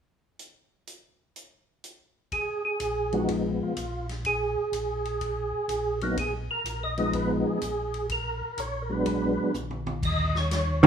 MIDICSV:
0, 0, Header, 1, 5, 480
1, 0, Start_track
1, 0, Tempo, 481928
1, 387, Time_signature, 4, 2, 24, 8
1, 10826, End_track
2, 0, Start_track
2, 0, Title_t, "Tonewheel organ"
2, 0, Program_c, 0, 16
2, 2316, Note_on_c, 0, 68, 89
2, 2613, Note_off_c, 0, 68, 0
2, 2640, Note_on_c, 0, 68, 73
2, 3113, Note_on_c, 0, 53, 59
2, 3120, Note_on_c, 0, 56, 57
2, 3125, Note_on_c, 0, 59, 55
2, 3128, Note_on_c, 0, 63, 61
2, 3130, Note_off_c, 0, 68, 0
2, 3131, Note_on_c, 0, 66, 71
2, 3265, Note_off_c, 0, 63, 0
2, 3277, Note_on_c, 0, 63, 74
2, 3284, Note_off_c, 0, 66, 0
2, 3421, Note_off_c, 0, 63, 0
2, 3611, Note_on_c, 0, 65, 60
2, 3719, Note_off_c, 0, 53, 0
2, 3722, Note_off_c, 0, 56, 0
2, 3725, Note_off_c, 0, 59, 0
2, 4049, Note_off_c, 0, 65, 0
2, 4246, Note_on_c, 0, 68, 86
2, 5961, Note_off_c, 0, 68, 0
2, 5997, Note_on_c, 0, 54, 54
2, 6004, Note_on_c, 0, 58, 56
2, 6010, Note_on_c, 0, 59, 51
2, 6012, Note_on_c, 0, 63, 59
2, 6137, Note_off_c, 0, 54, 0
2, 6140, Note_off_c, 0, 58, 0
2, 6143, Note_off_c, 0, 59, 0
2, 6144, Note_off_c, 0, 63, 0
2, 6167, Note_on_c, 0, 68, 84
2, 6308, Note_off_c, 0, 68, 0
2, 6482, Note_on_c, 0, 70, 71
2, 6805, Note_off_c, 0, 70, 0
2, 6808, Note_on_c, 0, 75, 86
2, 6948, Note_on_c, 0, 53, 64
2, 6951, Note_on_c, 0, 56, 54
2, 6956, Note_on_c, 0, 59, 58
2, 6964, Note_on_c, 0, 63, 70
2, 7097, Note_off_c, 0, 75, 0
2, 7123, Note_on_c, 0, 71, 82
2, 7265, Note_off_c, 0, 71, 0
2, 7439, Note_on_c, 0, 68, 73
2, 7556, Note_off_c, 0, 53, 0
2, 7557, Note_off_c, 0, 56, 0
2, 7560, Note_off_c, 0, 59, 0
2, 7564, Note_off_c, 0, 63, 0
2, 8033, Note_off_c, 0, 68, 0
2, 8086, Note_on_c, 0, 70, 74
2, 8564, Note_on_c, 0, 73, 78
2, 8571, Note_off_c, 0, 70, 0
2, 8784, Note_on_c, 0, 70, 53
2, 8791, Note_off_c, 0, 73, 0
2, 8858, Note_on_c, 0, 54, 57
2, 8865, Note_on_c, 0, 56, 47
2, 8870, Note_on_c, 0, 59, 52
2, 8871, Note_on_c, 0, 62, 64
2, 8874, Note_off_c, 0, 70, 0
2, 8886, Note_on_c, 0, 71, 67
2, 9469, Note_off_c, 0, 54, 0
2, 9473, Note_off_c, 0, 56, 0
2, 9475, Note_off_c, 0, 71, 0
2, 9476, Note_off_c, 0, 59, 0
2, 9476, Note_off_c, 0, 62, 0
2, 10011, Note_on_c, 0, 75, 99
2, 10330, Note_off_c, 0, 75, 0
2, 10332, Note_on_c, 0, 73, 82
2, 10813, Note_off_c, 0, 73, 0
2, 10826, End_track
3, 0, Start_track
3, 0, Title_t, "Hollow-body jazz guitar"
3, 0, Program_c, 1, 26
3, 10787, Note_on_c, 1, 51, 58
3, 10793, Note_on_c, 1, 58, 53
3, 10826, Note_off_c, 1, 51, 0
3, 10826, Note_off_c, 1, 58, 0
3, 10826, End_track
4, 0, Start_track
4, 0, Title_t, "Tonewheel organ"
4, 0, Program_c, 2, 16
4, 2788, Note_on_c, 2, 34, 69
4, 3583, Note_off_c, 2, 34, 0
4, 3746, Note_on_c, 2, 34, 74
4, 4543, Note_off_c, 2, 34, 0
4, 4701, Note_on_c, 2, 34, 69
4, 5500, Note_off_c, 2, 34, 0
4, 5659, Note_on_c, 2, 34, 71
4, 6459, Note_off_c, 2, 34, 0
4, 6615, Note_on_c, 2, 34, 76
4, 7417, Note_off_c, 2, 34, 0
4, 7582, Note_on_c, 2, 34, 65
4, 8379, Note_off_c, 2, 34, 0
4, 8538, Note_on_c, 2, 34, 68
4, 9337, Note_off_c, 2, 34, 0
4, 9498, Note_on_c, 2, 34, 66
4, 9985, Note_on_c, 2, 39, 81
4, 10295, Note_off_c, 2, 34, 0
4, 10826, Note_off_c, 2, 39, 0
4, 10826, End_track
5, 0, Start_track
5, 0, Title_t, "Drums"
5, 390, Note_on_c, 9, 42, 47
5, 490, Note_off_c, 9, 42, 0
5, 870, Note_on_c, 9, 42, 44
5, 969, Note_off_c, 9, 42, 0
5, 1353, Note_on_c, 9, 42, 47
5, 1452, Note_off_c, 9, 42, 0
5, 1830, Note_on_c, 9, 42, 46
5, 1930, Note_off_c, 9, 42, 0
5, 2309, Note_on_c, 9, 36, 30
5, 2309, Note_on_c, 9, 51, 43
5, 2408, Note_off_c, 9, 51, 0
5, 2409, Note_off_c, 9, 36, 0
5, 2787, Note_on_c, 9, 44, 45
5, 2787, Note_on_c, 9, 51, 49
5, 2886, Note_off_c, 9, 44, 0
5, 2886, Note_off_c, 9, 51, 0
5, 3112, Note_on_c, 9, 51, 29
5, 3212, Note_off_c, 9, 51, 0
5, 3272, Note_on_c, 9, 36, 26
5, 3272, Note_on_c, 9, 51, 47
5, 3371, Note_off_c, 9, 51, 0
5, 3372, Note_off_c, 9, 36, 0
5, 3750, Note_on_c, 9, 44, 50
5, 3750, Note_on_c, 9, 51, 50
5, 3850, Note_off_c, 9, 44, 0
5, 3850, Note_off_c, 9, 51, 0
5, 4076, Note_on_c, 9, 51, 35
5, 4078, Note_on_c, 9, 38, 26
5, 4176, Note_off_c, 9, 51, 0
5, 4178, Note_off_c, 9, 38, 0
5, 4230, Note_on_c, 9, 51, 50
5, 4232, Note_on_c, 9, 36, 28
5, 4329, Note_off_c, 9, 51, 0
5, 4331, Note_off_c, 9, 36, 0
5, 4710, Note_on_c, 9, 44, 41
5, 4710, Note_on_c, 9, 51, 47
5, 4810, Note_off_c, 9, 44, 0
5, 4810, Note_off_c, 9, 51, 0
5, 5033, Note_on_c, 9, 51, 32
5, 5133, Note_off_c, 9, 51, 0
5, 5189, Note_on_c, 9, 51, 42
5, 5190, Note_on_c, 9, 36, 26
5, 5288, Note_off_c, 9, 51, 0
5, 5290, Note_off_c, 9, 36, 0
5, 5666, Note_on_c, 9, 44, 45
5, 5666, Note_on_c, 9, 51, 50
5, 5765, Note_off_c, 9, 44, 0
5, 5765, Note_off_c, 9, 51, 0
5, 5989, Note_on_c, 9, 51, 36
5, 6088, Note_off_c, 9, 51, 0
5, 6149, Note_on_c, 9, 36, 30
5, 6150, Note_on_c, 9, 51, 54
5, 6249, Note_off_c, 9, 36, 0
5, 6249, Note_off_c, 9, 51, 0
5, 6629, Note_on_c, 9, 44, 48
5, 6629, Note_on_c, 9, 51, 51
5, 6728, Note_off_c, 9, 44, 0
5, 6728, Note_off_c, 9, 51, 0
5, 6947, Note_on_c, 9, 51, 35
5, 7047, Note_off_c, 9, 51, 0
5, 7104, Note_on_c, 9, 51, 44
5, 7106, Note_on_c, 9, 36, 28
5, 7204, Note_off_c, 9, 51, 0
5, 7206, Note_off_c, 9, 36, 0
5, 7584, Note_on_c, 9, 44, 55
5, 7584, Note_on_c, 9, 51, 47
5, 7684, Note_off_c, 9, 44, 0
5, 7684, Note_off_c, 9, 51, 0
5, 7907, Note_on_c, 9, 51, 36
5, 8006, Note_off_c, 9, 51, 0
5, 8062, Note_on_c, 9, 51, 51
5, 8065, Note_on_c, 9, 36, 30
5, 8162, Note_off_c, 9, 51, 0
5, 8164, Note_off_c, 9, 36, 0
5, 8542, Note_on_c, 9, 44, 49
5, 8542, Note_on_c, 9, 51, 47
5, 8641, Note_off_c, 9, 44, 0
5, 8641, Note_off_c, 9, 51, 0
5, 9021, Note_on_c, 9, 51, 47
5, 9024, Note_on_c, 9, 36, 28
5, 9120, Note_off_c, 9, 51, 0
5, 9124, Note_off_c, 9, 36, 0
5, 9503, Note_on_c, 9, 44, 49
5, 9505, Note_on_c, 9, 48, 35
5, 9603, Note_off_c, 9, 44, 0
5, 9605, Note_off_c, 9, 48, 0
5, 9667, Note_on_c, 9, 48, 44
5, 9767, Note_off_c, 9, 48, 0
5, 9827, Note_on_c, 9, 48, 65
5, 9926, Note_off_c, 9, 48, 0
5, 9986, Note_on_c, 9, 36, 63
5, 9989, Note_on_c, 9, 49, 65
5, 10086, Note_off_c, 9, 36, 0
5, 10089, Note_off_c, 9, 49, 0
5, 10311, Note_on_c, 9, 38, 40
5, 10410, Note_off_c, 9, 38, 0
5, 10470, Note_on_c, 9, 44, 51
5, 10470, Note_on_c, 9, 51, 57
5, 10472, Note_on_c, 9, 38, 56
5, 10569, Note_off_c, 9, 44, 0
5, 10569, Note_off_c, 9, 51, 0
5, 10571, Note_off_c, 9, 38, 0
5, 10789, Note_on_c, 9, 51, 34
5, 10826, Note_off_c, 9, 51, 0
5, 10826, End_track
0, 0, End_of_file